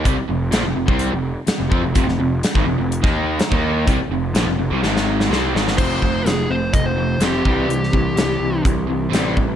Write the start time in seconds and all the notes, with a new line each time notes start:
0.05 C2 C3 G3, kick, closed hi-hat
0.17 muted picked electric bass stroke, muted distorted electric guitar stroke, muted overdriven electric guitar stroke
0.29 F1 F2 C3
0.51 A#1 A#2 F3, snare, closed hi-hat
0.63 F1 F2 C3
0.75 F1 F2 C3
0.86 C2 C3 G3 C4, kick
0.99 closed hi-hat
1.11 F1 F2 C3
1.47 muted overdriven electric guitar stroke, muted picked electric bass stroke, muted distorted electric guitar stroke, snare, closed hi-hat
1.58 F1 F2 C3
1.69 F2 F3 C4, kick
1.81 F1 F2 C3
1.94 F1 F2 C3, kick, closed hi-hat
2.07 F1 F2 C3, snare
2.20 F1 F2 C3
2.43 snare, closed hi-hat
2.55 G#1 G#2 D#3, kick
2.66 F1 F2 C3
2.79 F1 F2 C3
2.92 closed hi-hat
3.04 D#2 D#3 A#3 D#4, kick, snare
3.39 muted distorted electric guitar stroke, muted picked electric bass stroke, muted overdriven electric guitar stroke, snare, closed hi-hat
3.52 D#2 D#3 A#3 D#4, kick
3.87 C2 C3 G3, kick, closed hi-hat
3.99 muted picked electric bass stroke, muted distorted electric guitar stroke, muted overdriven electric guitar stroke
4.09 F1
4.14 F2 C3
4.33 A#1, snare, closed hi-hat
4.37 A#2 F3
4.45 F1 F2
4.49 C3
4.58 F1 F2 C3
4.70 C2 C3 G3
4.83 G#1 G#2 D#3 G#3, snare
4.97 snare
5.20 snare
5.30 C2 C3 G3 C4, snare
5.54 G#1 G#2 D#3 G#3, snare
5.68 snare
5.78 F1 F2 C3 F3 A3 C4 C5, kick, crash
6.02 F1 F2 C3 F3 A3, kick
6.24 F1 F2 C3 F3 A3 G#4, snare, closed hi-hat
6.49 F1 F2 C3 F3 A3 C5
6.73 F1 F2 C3 F3 A3 D#5, kick, closed hi-hat
6.86 C5
6.97 F2 C3 F3 A3
7.19 F1 F2 A3 C4, snare, closed hi-hat
7.23 C3 F3 G4
7.45 C2 C3 E3 G3 C4, kick
7.68 C2 C3 E3 G3, closed hi-hat
7.84 snare
7.93 C2 C3 E3 G3, kick
8.16 C2 C3 E3 G3, snare, closed hi-hat
8.39 C2 C3 G3
8.43 C3 E3
8.63 C2 C3 G3, kick, closed hi-hat
8.67 C3 E3
8.87 C3 E3 G3
9.10 A1 C3 E3 G3 C4, closed hi-hat
9.14 G3, snare
9.36 C3 E3 G3, kick